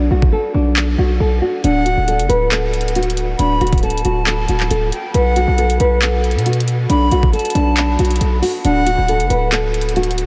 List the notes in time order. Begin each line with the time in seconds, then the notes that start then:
0.11 B1 F#4
0.22 kick
0.32 A4
0.54 B1 D4
0.76 clap
0.98 B1 F#4
1.20 B1 A4
1.42 F#4
1.63 D1 D4 F#5, closed hi-hat
1.86 F#4, closed hi-hat
1.97 D1
2.08 A4, closed hi-hat
2.19 F#1, closed hi-hat
2.29 D1 B4, closed hi-hat
2.52 A4, clap, closed hi-hat
2.73 closed hi-hat
2.81 closed hi-hat
2.88 closed hi-hat
2.95 F#4, closed hi-hat
3.03 closed hi-hat
3.10 closed hi-hat
3.17 closed hi-hat
3.39 D1 D4 B5, closed hi-hat
3.61 D1 F#4, closed hi-hat
3.67 closed hi-hat
3.73 kick, closed hi-hat
3.78 closed hi-hat
3.83 A4 A5, closed hi-hat
3.90 closed hi-hat
3.98 closed hi-hat
4.05 D1 F#4, closed hi-hat
4.26 A4, clap, closed hi-hat
4.48 D1 F#4, closed hi-hat
4.60 clap
4.70 D1 A4, closed hi-hat
4.92 G5, closed hi-hat
5.14 B1 B4 F#5, closed hi-hat
5.36 F#4, closed hi-hat
5.48 B1
5.58 A4, closed hi-hat
5.70 closed hi-hat
5.80 B1 B4, closed hi-hat
6.02 A4, clap, closed hi-hat
6.24 closed hi-hat
6.31 closed hi-hat
6.35 B2, closed hi-hat
6.46 F#4, closed hi-hat
6.53 closed hi-hat
6.60 closed hi-hat
6.68 closed hi-hat
6.89 B1 D4 B5, closed hi-hat
7.11 B1 F#4, closed hi-hat
7.23 kick
7.33 A4 A5, closed hi-hat
7.39 closed hi-hat
7.45 closed hi-hat
7.50 closed hi-hat
7.55 B1 D4, closed hi-hat
7.77 clap, closed hi-hat
7.99 B1 F#4, closed hi-hat
8.05 closed hi-hat
8.11 closed hi-hat
8.16 closed hi-hat
8.21 B1 A4, closed hi-hat
8.42 F#4, open hi-hat
8.64 D1 D4 F#5, closed hi-hat
8.86 F#4, closed hi-hat
8.98 D1
9.08 A4, closed hi-hat
9.20 F#1, closed hi-hat
9.30 D1 B4, closed hi-hat
9.52 A4, clap, closed hi-hat
9.74 closed hi-hat
9.81 closed hi-hat
9.89 closed hi-hat
9.96 F#4, closed hi-hat
10.03 closed hi-hat
10.11 closed hi-hat
10.18 closed hi-hat